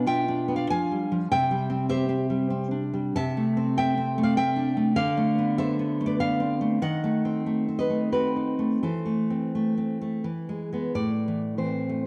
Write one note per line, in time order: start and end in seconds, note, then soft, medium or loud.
0.00 0.70 B2 medium
0.00 0.27 D4 medium
0.06 1.00 F4 medium
0.06 0.48 E5 medium
0.06 0.52 G5 loud
0.28 1.20 D4 medium
0.48 0.57 B3 medium
0.56 0.71 D5 medium
0.56 0.70 F5 medium
0.70 1.11 F3 medium
0.70 1.27 F5 medium
0.70 1.28 G#5 loud
0.91 1.31 G3 medium
1.12 1.31 F3 medium
1.32 3.13 C3 medium
1.32 1.86 E5 medium
1.32 1.87 G5 loud
1.51 2.29 G3 medium
1.70 2.08 C4 medium
1.89 2.83 G4 medium
1.89 3.13 C5 medium
1.89 3.12 E5 loud
2.09 2.49 C4 medium
2.30 2.92 G3 medium
2.50 2.71 C4 medium
2.71 3.16 D4 medium
2.94 3.16 G3 medium
3.16 4.94 C3 medium
3.16 3.75 E5 medium
3.16 3.75 A5 loud
3.37 4.17 A3 medium
3.57 3.96 C4 medium
3.77 4.67 A4 medium
3.77 4.20 E5 loud
3.77 4.21 G5 loud
3.98 4.37 C4 medium
4.18 4.37 A3 medium
4.23 4.38 D5 medium
4.23 4.37 F5 medium
4.37 4.76 C4 medium
4.37 4.94 E5 loud
4.37 4.95 G5 loud
4.56 4.96 D4 medium
4.77 4.98 A3 medium
4.96 6.78 D3 medium
4.96 5.55 D5 medium
4.96 5.56 F5 loud
5.17 5.99 A3 medium
5.38 5.78 B3 medium
5.58 6.07 A4 medium
5.58 6.03 C5 medium
5.58 6.04 E5 loud
5.79 6.19 B3 medium
6.01 6.60 A3 medium
6.06 6.21 B4 medium
6.06 6.20 D5 medium
6.20 6.82 B3 medium
6.20 6.78 D5 medium
6.20 6.79 F5 loud
6.40 6.82 C4 medium
6.61 6.81 A3 medium
6.82 8.79 D#3 medium
6.82 7.75 D#5 medium
6.82 7.75 F#5 loud
7.04 7.45 A3 medium
7.25 7.67 C4 medium
7.46 7.89 A3 medium
7.68 8.11 C4 medium
7.79 8.11 B4 medium
7.79 8.12 D#5 loud
7.90 8.58 A3 medium
8.12 8.83 C4 medium
8.12 8.79 F#4 medium
8.12 8.80 B4 loud
8.36 8.83 D#4 soft
8.59 8.82 A3 medium
8.83 10.22 E3 medium
8.83 10.22 A4 medium
8.83 10.22 C5 medium
9.06 9.54 A3 soft
9.30 9.76 C4 medium
9.55 10.00 A3 medium
9.78 10.25 C4 medium
10.02 10.25 A3 medium
10.24 10.92 E3 medium
10.49 10.71 G#3 medium
10.73 10.93 G#3 medium
10.73 10.93 B3 medium
10.95 12.06 A2 medium
10.95 11.56 D5 loud
11.28 11.56 E3 medium
11.57 12.06 E3 soft
11.57 12.06 C4 medium
11.57 12.03 C5 medium
11.89 12.06 A3 medium